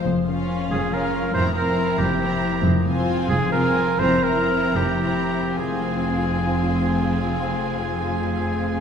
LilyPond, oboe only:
\new Staff \with { instrumentName = "Oboe" } { \time 6/8 \key f \minor \tempo 4. = 83 r4. aes'8 bes'4 | c''8 bes'4 g'4. | r4. aes'8 bes'4 | c''8 bes'4 g'4. |
aes'2.~ | aes'2. | }